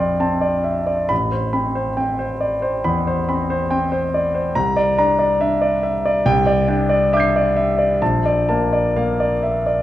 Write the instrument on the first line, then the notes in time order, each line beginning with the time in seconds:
grand piano
Already playing: F2 C4 E5 A5 C6 F6 A6 D7
0.00 D5
0.20 C4 A5
0.41 D5
0.64 E5
0.87 D5
1.09 A1 B5
1.32 C5
1.53 C4 B5
1.75 C5
1.97 C4 G5
2.19 C5
2.41 D5
2.62 C5
2.84 E2 B5
3.07 C5
3.29 C4 B5
3.50 C5
3.70 C4 G5
3.92 C5
4.14 D5
4.35 C5
4.55 C2 A#5
4.76 D5
4.98 D4 A#5
5.19 D5
5.41 D4 E5
5.62 D5
5.83 E5
6.05 D5
6.26 C2 G5
6.46 D5
6.68 D4 G5
6.89 D5
7.13 D4 E5 D6 G6
7.20 C7
7.36 D5
7.56 E5
7.79 D5
8.02 A#1 A5
8.26 D5
8.49 A#3 A5
8.73 D5
8.96 A#3 F5
9.20 D5
9.43 E5
9.66 D5